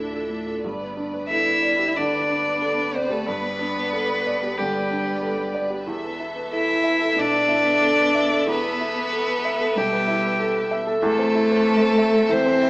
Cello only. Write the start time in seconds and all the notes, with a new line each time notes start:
Already playing: E3
1.29 E4
1.97 D4
2.94 C4
3.12 A3
3.27 B3
4.59 G3
6.53 E4
7.19 D4
8.48 B3
9.75 G3
11.03 A3
12.29 C4